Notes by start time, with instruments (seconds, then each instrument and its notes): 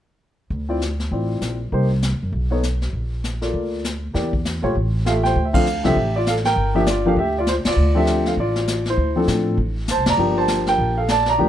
0.50 upright bass D2, brush sweep, kick
0.69 grand piano C4 E4 F4 D5
0.81 snare, hi-hat pedal
0.99 snare
1.11 upright bass A1, grand piano C4 E4 F4 D5, brush sweep, kick
1.41 upright bass A#1, snare, hi-hat pedal
1.72 upright bass C2, grand piano A#3 D#4 G4 C5, brush sweep, kick
2.02 snare, hi-hat pedal
2.12 upright bass D#2
2.23 upright bass F#2
2.32 upright bass B1, brush sweep, kick
2.50 grand piano B3 D#4 A4 C#5
2.63 snare, hi-hat pedal
2.82 snare
2.93 upright bass A#1, brush sweep, kick
3.24 snare, hi-hat pedal
3.41 grand piano A#3 F4 A4 D5, snare
3.53 upright bass D2, brush sweep, kick
3.84 snare, hi-hat pedal
4.14 upright bass E2, grand piano A#3 E4 G4 D5, brush sweep, kick, snare
4.33 kick
4.45 snare, hi-hat pedal
4.62 upright bass A#1, grand piano A3 F4 G4 C#5
4.75 upright bass A1, brush sweep, kick
5.05 grand piano A3 F4 G4 E5 F5, snare, hi-hat pedal
5.09 grand piano A4
5.23 grand piano C5 G5, snare
5.35 upright bass D2, brush sweep, kick
5.45 grand piano E5
5.53 grand piano F3 C4 D4 A4 F5, kick, ride
5.66 hi-hat pedal
5.84 upright bass C2, grand piano F3 C4 D4 G4 A4 E5, snare
5.96 upright bass A1, brush sweep, kick
6.16 grand piano F4 D5
6.26 grand piano A4 F5, snare, hi-hat pedal
6.37 snare
6.44 grand piano G5, snare
6.46 grand piano A#4, snare
6.56 upright bass G1, brush sweep, kick
6.75 grand piano F3 A#3 D4 G4 E5
6.86 grand piano F4 D5, snare, hi-hat pedal
7.05 grand piano F3 A#3 D4 G4 A4 F5
7.16 upright bass D2, grand piano G4 E5, brush sweep, kick
7.38 grand piano F4 D5
7.47 grand piano F4 C5, snare, hi-hat pedal
7.65 upright bass D#2, grand piano F4 D5, snare, ride
7.76 upright bass D2, brush sweep
7.95 grand piano F3 C4 D4 G4 A4 E5
8.07 snare, hi-hat pedal
8.26 grand piano A4 F5, snare
8.37 upright bass A1, grand piano F4 D5, brush sweep, kick
8.56 snare
8.68 snare, hi-hat pedal
8.85 snare
8.90 grand piano E4 C5
8.97 upright bass D2, brush sweep, kick
9.16 grand piano F3 C4 D4 A4
9.27 upright bass A2, snare, hi-hat pedal
9.57 upright bass A1, brush sweep, kick
9.88 grand piano C5 A5, snare, hi-hat pedal
9.97 upright bass C2
10.06 upright bass F#1, grand piano D5 A#5, snare, ride
10.17 upright bass G1, grand piano F3 A#3 D4 G4, brush sweep
10.38 grand piano C5 A5
10.48 snare, hi-hat pedal
10.66 grand piano A#4 G5, snare
10.78 upright bass A#1, brush sweep, kick
10.98 grand piano A4 F5
11.08 grand piano D5 A5, snare, hi-hat pedal
11.26 grand piano A#5, snare
11.30 grand piano D5
11.38 upright bass D2, grand piano F3 A#3 D4 G4, brush sweep, kick